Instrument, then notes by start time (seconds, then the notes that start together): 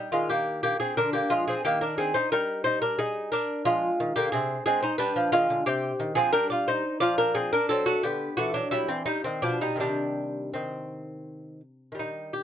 lute
Already playing: G3
0.12 D#3 G#3 F4
0.30 A#3 G4
0.63 A#3 G4
0.80 C4 G#4
0.97 D3 D4 A#4
1.13 A#3 G4
1.30 F3 G#3 F4
1.48 C4 G#4
1.65 D#3 A#3 G4
1.81 D4 A#4
1.98 C4 G#4
2.14 D#4 C5
2.32 G3 D#4 A#4
2.64 D#4 C5
2.82 D4 A#4
2.98 D#4 G#4
3.32 D4 A#4
3.65 F3 G#3 F4
4.00 D#3
4.16 D3 A#3 G4
4.32 C3 C4 G#4
4.66 G#3 C4 G#4
4.83 D#4 C5
4.98 G3 D4 B4
5.16 F3
5.32 D#3 G#3 F4
5.50 D3
5.66 C3 C4 G4
6.00 D#3
6.15 F3 C4 G#4
6.33 G3 D4 A#4
6.50 F4 D5
6.68 D#4 C5
7.00 F3 F4 D5
7.18 D4 A#4
7.35 C4 G#4
7.53 D4 A#4
7.69 F#3 C4 A4
7.86 A3 F#4
8.03 D3 B3 G4
8.37 E3 A3 F#4
8.54 F#3 D4
8.71 F#3 G3 E4
8.88 E3 C4
9.06 G3 D#4
9.24 D#3 C4
9.42 B2 F3 D4
9.61 G3 D#4
9.76 C3 D#3
9.80 G3 D4
10.54 D#3 C4
11.92 D#3 G3
11.99 D#4
12.33 G4